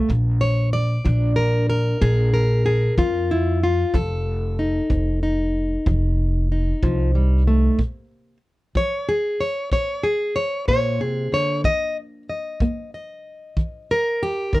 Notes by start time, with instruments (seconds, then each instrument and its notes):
Already playing: steel-string acoustic guitar F5
0.09 upright bass A#1, steel-string acoustic guitar A#2, kick
0.41 steel-string acoustic guitar C#5
0.73 steel-string acoustic guitar D5
1.05 upright bass A#1, steel-string acoustic guitar F3 D4, kick
1.36 steel-string acoustic guitar A#4
1.70 steel-string acoustic guitar A#4
2.01 upright bass A#1, steel-string acoustic guitar A#2 G#4, kick
2.34 steel-string acoustic guitar A#4
2.66 steel-string acoustic guitar G#4
2.98 upright bass F2, steel-string acoustic guitar F3 F4, kick
3.31 steel-string acoustic guitar E4
3.63 steel-string acoustic guitar F4
3.94 upright bass F1, steel-string acoustic guitar F3 A4, kick
4.59 steel-string acoustic guitar D#4
4.90 upright bass F1, steel-string acoustic guitar C4, kick
5.23 steel-string acoustic guitar D#4
5.86 upright bass F1, steel-string acoustic guitar F3, kick
6.52 steel-string acoustic guitar D#4
6.83 upright bass C2, steel-string acoustic guitar F3, kick
7.15 steel-string acoustic guitar G3
7.47 steel-string acoustic guitar A3
7.79 steel-string acoustic guitar A#2, kick
8.75 steel-string acoustic guitar F3 C#5, kick
9.09 steel-string acoustic guitar G#4
9.40 steel-string acoustic guitar C#5
9.72 steel-string acoustic guitar A#2 C#5, kick
10.03 steel-string acoustic guitar G#4
10.36 steel-string acoustic guitar C#5
10.68 steel-string acoustic guitar A#2 C#5, kick
11.00 steel-string acoustic guitar C3 G#4
11.32 steel-string acoustic guitar D3 C#5
11.64 steel-string acoustic guitar D#3 D#5, kick
12.29 steel-string acoustic guitar D#5
12.60 steel-string acoustic guitar A#3, kick
12.94 steel-string acoustic guitar D#5
13.57 steel-string acoustic guitar D#3, kick
13.91 steel-string acoustic guitar A#4
14.23 steel-string acoustic guitar G4
14.53 steel-string acoustic guitar D#3 A#4, kick